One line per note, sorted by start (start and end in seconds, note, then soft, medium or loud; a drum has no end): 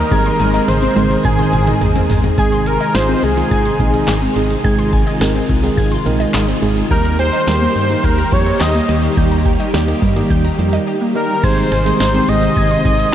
0.00 0.70 A#4 loud
0.11 0.31 G#1 loud
0.11 2.36 D#3 medium
0.11 0.68 D#3 medium
0.11 2.36 G#3 medium
0.11 0.68 G#3 medium
0.11 2.36 C4 medium
0.11 0.68 C4 medium
0.11 0.68 D#4 medium
0.11 2.36 G#4 medium
0.11 0.68 G#4 medium
0.11 0.21 G#6 loud
0.11 kick loud
0.11 closed hi-hat medium
0.11 high tom medium
0.26 0.35 C6 medium
0.26 closed hi-hat medium
0.40 0.60 G#1 loud
0.40 0.49 G#5 medium
0.40 closed hi-hat medium
0.40 high tom medium
0.54 0.63 D#5 medium
0.54 closed hi-hat medium
0.68 0.88 G#1 loud
0.68 0.77 G#4 medium
0.68 1.25 C5 loud
0.68 closed hi-hat medium
0.68 mid tom medium
0.82 0.91 C4 medium
0.82 closed hi-hat medium
0.96 1.16 G#1 loud
0.96 1.06 D#3 medium
0.96 1.06 G#3 medium
0.96 1.06 C4 medium
0.96 1.06 D#4 medium
0.96 1.06 G#4 medium
0.96 closed hi-hat medium
0.96 mid tom medium
1.10 1.20 D#3 medium
1.10 1.86 D#3 medium
1.10 1.86 G#3 medium
1.10 1.86 C4 medium
1.10 1.86 D#4 medium
1.10 1.86 G#4 medium
1.10 closed hi-hat medium
1.25 1.45 G#1 loud
1.25 2.06 G#4 medium
1.25 1.34 G#6 loud
1.25 kick medium
1.25 closed hi-hat medium
1.25 mid tom medium
1.39 1.48 C6 medium
1.39 closed hi-hat medium
1.39 mid tom medium
1.53 1.73 G#1 loud
1.53 1.62 G#5 medium
1.53 closed hi-hat medium
1.53 mid tom loud
1.67 1.76 D#5 medium
1.67 closed hi-hat medium
1.67 mid tom medium
1.81 2.01 G#1 loud
1.81 1.91 G#4 medium
1.81 closed hi-hat medium
1.81 floor tom loud
1.95 2.05 C4 medium
1.95 closed hi-hat medium
1.95 floor tom loud
2.10 2.30 G#1 loud
2.10 2.19 G#3 medium
2.10 floor tom loud
2.10 open hi-hat medium
2.24 2.33 D#3 medium
2.24 closed hi-hat medium
2.24 floor tom loud
2.38 2.78 G#1 loud
2.38 6.87 C3 medium
2.38 11.40 D#3 medium
2.38 6.87 G#3 medium
2.38 2.75 G#3 medium
2.38 2.75 C4 medium
2.38 2.75 D#4 medium
2.38 4.62 D#4 medium
2.38 2.75 G#4 medium
2.38 2.68 G#4 loud
2.38 2.47 G#6 loud
2.38 kick loud
2.38 closed hi-hat medium
2.52 2.61 C6 medium
2.52 closed hi-hat medium
2.66 2.96 A#4 loud
2.66 2.75 G#5 medium
2.66 closed hi-hat medium
2.80 2.90 D#5 medium
2.80 closed hi-hat soft
2.94 3.14 G#1 loud
2.94 3.23 G#3 medium
2.94 3.23 C4 medium
2.94 3.23 D#4 medium
2.94 3.23 F4 medium
2.94 3.04 G#4 medium
2.94 3.25 C5 loud
2.94 snare loud
2.94 closed hi-hat medium
3.09 3.18 C4 medium
3.09 closed hi-hat medium
3.23 3.43 C2 medium
3.23 3.32 G#3 medium
3.23 4.36 G#4 loud
3.23 closed hi-hat medium
3.37 3.46 D#3 medium
3.37 3.65 G#3 medium
3.37 3.65 C4 medium
3.37 3.65 D#4 medium
3.37 3.65 F4 medium
3.37 closed hi-hat medium
3.51 3.71 G#1 loud
3.51 3.60 G#6 loud
3.51 kick medium
3.51 closed hi-hat medium
3.65 3.75 C6 medium
3.65 closed hi-hat medium
3.80 3.99 A#1 loud
3.80 4.17 G#3 medium
3.80 4.17 C4 medium
3.80 4.17 D#4 medium
3.80 4.17 G#4 medium
3.80 kick medium
3.80 closed hi-hat medium
3.94 4.03 D#5 medium
3.94 closed hi-hat medium
4.08 4.28 G#1 loud
4.08 4.17 G#4 medium
4.08 snare loud
4.08 clap medium
4.08 closed hi-hat medium
4.22 4.31 C4 medium
4.22 closed hi-hat medium
4.36 4.56 G#1 loud
4.36 4.55 G#3 medium
4.36 4.55 C4 medium
4.36 4.55 D#4 medium
4.36 4.55 G#4 loud
4.36 closed hi-hat medium
4.50 4.60 D#3 medium
4.50 closed hi-hat medium
4.64 5.04 G#1 loud
4.64 5.02 G#3 medium
4.64 5.02 C4 medium
4.64 5.02 D#4 medium
4.64 6.88 F4 medium
4.64 5.02 G#4 loud
4.64 4.74 G#6 loud
4.64 kick loud
4.64 closed hi-hat medium
4.79 4.88 C6 medium
4.79 closed hi-hat medium
4.93 5.02 G#5 medium
4.93 kick loud
4.93 closed hi-hat medium
5.07 5.16 D#5 medium
5.07 closed hi-hat soft
5.21 5.41 G#1 loud
5.21 5.49 G#3 medium
5.21 5.49 C4 medium
5.21 5.49 D#4 medium
5.21 5.30 G#4 medium
5.21 5.49 A#4 loud
5.21 snare loud
5.21 closed hi-hat medium
5.35 5.44 C4 medium
5.35 closed hi-hat medium
5.49 5.69 C2 medium
5.49 5.58 G#3 medium
5.49 kick medium
5.49 closed hi-hat medium
5.63 5.73 D#3 medium
5.63 5.92 G#3 medium
5.63 5.92 C4 medium
5.63 5.92 D#4 medium
5.63 5.92 G#4 loud
5.63 closed hi-hat medium
5.77 5.97 G#1 loud
5.77 5.87 G#6 loud
5.77 kick medium
5.77 closed hi-hat medium
5.92 6.01 C6 medium
5.92 closed hi-hat medium
6.06 6.26 A#1 medium
6.06 6.43 G#3 medium
6.06 6.43 C4 medium
6.06 6.43 D#4 medium
6.06 6.43 A#4 loud
6.06 closed hi-hat medium
6.20 6.29 D#5 medium
6.20 closed hi-hat soft
6.34 6.54 G#1 loud
6.34 6.43 G#4 medium
6.34 snare loud
6.34 clap medium
6.34 closed hi-hat medium
6.48 6.58 C4 medium
6.48 closed hi-hat medium
6.62 6.82 G#1 loud
6.62 6.81 G#3 medium
6.62 6.81 C4 medium
6.62 6.81 D#4 medium
6.62 6.81 G#4 loud
6.62 closed hi-hat medium
6.76 6.86 D#3 medium
6.76 closed hi-hat soft
6.91 7.30 D#2 loud
6.91 7.28 G3 medium
6.91 11.40 G3 medium
6.91 7.28 A#3 medium
6.91 11.40 A#3 medium
6.91 7.28 D#4 medium
6.91 7.28 G4 medium
6.91 11.40 G4 medium
6.91 7.17 A#4 medium
6.91 7.00 G6 loud
6.91 kick loud
6.91 closed hi-hat medium
7.05 7.14 A#5 medium
7.05 closed hi-hat medium
7.19 8.06 C5 loud
7.19 7.28 G5 medium
7.19 closed hi-hat medium
7.33 7.42 D#5 medium
7.33 closed hi-hat medium
7.47 7.67 D#2 loud
7.47 7.76 G3 medium
7.47 7.76 A#3 medium
7.47 7.76 D#4 medium
7.47 7.57 G4 medium
7.47 7.76 A#4 medium
7.47 snare loud
7.47 closed hi-hat medium
7.62 7.71 A#3 medium
7.62 closed hi-hat medium
7.76 7.96 G2 medium
7.76 7.85 G3 medium
7.76 closed hi-hat medium
7.90 7.99 D#3 medium
7.90 8.18 G3 medium
7.90 8.18 A#3 medium
7.90 8.18 D#4 medium
7.90 8.18 G4 medium
7.90 closed hi-hat medium
8.04 8.24 D#2 loud
8.04 8.34 A#4 medium
8.04 8.13 G6 loud
8.04 kick medium
8.04 closed hi-hat medium
8.18 8.27 A#5 medium
8.18 closed hi-hat soft
8.32 8.52 F2 medium
8.32 8.70 G3 medium
8.32 8.70 A#3 medium
8.32 8.70 D#4 medium
8.32 8.70 G4 medium
8.32 8.62 C#5 loud
8.32 kick medium
8.32 closed hi-hat medium
8.46 8.56 D#5 medium
8.46 closed hi-hat soft
8.60 8.81 D#2 loud
8.60 8.70 G4 medium
8.60 9.03 D#5 loud
8.60 snare loud
8.60 clap medium
8.60 closed hi-hat medium
8.75 8.84 A#3 medium
8.75 closed hi-hat medium
8.89 9.09 D#2 loud
8.89 9.08 G3 medium
8.89 9.08 A#3 medium
8.89 9.08 D#4 medium
8.89 9.08 G4 medium
8.89 closed hi-hat medium
9.03 9.12 D#3 medium
9.03 closed hi-hat medium
9.17 9.57 D#2 loud
9.17 9.55 G3 medium
9.17 9.55 A#3 medium
9.17 9.55 D#4 medium
9.17 9.55 G4 loud
9.17 9.27 G6 loud
9.17 kick loud
9.17 closed hi-hat medium
9.31 9.41 A#5 medium
9.31 closed hi-hat medium
9.45 9.55 G5 medium
9.45 kick loud
9.45 closed hi-hat medium
9.60 9.69 D#5 medium
9.60 closed hi-hat medium
9.74 9.94 D#2 loud
9.74 10.02 G3 medium
9.74 10.02 A#3 medium
9.74 10.02 D#4 medium
9.74 9.83 G4 medium
9.74 10.02 G4 loud
9.74 snare loud
9.74 closed hi-hat medium
9.88 9.97 A#3 medium
9.88 closed hi-hat medium
10.02 10.22 G2 medium
10.02 10.11 G3 medium
10.02 kick medium
10.02 closed hi-hat medium
10.16 10.25 D#3 medium
10.16 10.44 G3 medium
10.16 10.44 A#3 medium
10.16 10.44 D#4 medium
10.16 10.44 G4 loud
10.16 closed hi-hat medium
10.30 10.50 D#2 medium
10.30 10.40 G6 loud
10.30 kick medium
10.30 closed hi-hat medium
10.45 10.54 A#5 medium
10.45 closed hi-hat medium
10.59 10.79 F2 medium
10.59 10.96 G3 medium
10.59 10.96 A#3 medium
10.59 10.96 D#4 medium
10.59 10.96 G4 loud
10.59 closed hi-hat medium
10.73 10.82 D#5 medium
10.73 closed hi-hat medium
10.87 10.96 G4 medium
11.01 11.10 A#3 medium
11.15 11.34 G3 medium
11.15 11.34 A#3 medium
11.15 11.34 D#4 medium
11.15 11.34 G4 loud
11.15 11.45 A#4 medium
11.29 11.39 D#3 medium
11.44 11.63 G#1 loud
11.44 13.15 C3 medium
11.44 11.72 D#3 medium
11.44 13.15 D#3 medium
11.44 11.72 G#3 medium
11.44 13.15 G#3 medium
11.44 11.72 C4 medium
11.44 13.15 D#4 medium
11.44 11.72 D#4 medium
11.44 11.72 G#4 medium
11.44 12.00 C5 loud
11.44 11.53 G#6 loud
11.44 kick loud
11.44 closed hi-hat medium
11.44 crash loud
11.58 11.67 C6 medium
11.58 closed hi-hat medium
11.72 11.92 G#1 loud
11.72 11.81 G#5 medium
11.72 closed hi-hat medium
11.86 12.05 D#3 medium
11.86 12.05 G#3 medium
11.86 12.05 C4 medium
11.86 12.05 D#4 medium
11.86 12.05 G#4 medium
11.86 11.95 D#5 medium
11.86 closed hi-hat medium
12.00 12.20 G#1 loud
12.00 12.09 G#4 medium
12.00 12.30 C5 medium
12.00 snare loud
12.00 closed hi-hat medium
12.14 12.89 D#3 medium
12.14 12.89 G#3 medium
12.14 12.24 C4 medium
12.14 12.89 C4 medium
12.14 12.89 D#4 medium
12.14 12.89 G4 medium
12.14 closed hi-hat medium
12.29 12.48 G#1 loud
12.29 12.38 G#3 medium
12.29 13.15 D#5 loud
12.29 closed hi-hat medium
12.43 12.52 D#3 medium
12.43 closed hi-hat medium
12.57 12.77 G#1 loud
12.57 12.66 G#6 loud
12.57 kick medium
12.57 closed hi-hat medium
12.71 12.80 C6 medium
12.71 closed hi-hat medium
12.85 13.05 G#1 loud
12.85 12.94 G#5 medium
12.85 kick loud
12.85 closed hi-hat medium
12.99 13.09 D#5 medium
12.99 closed hi-hat medium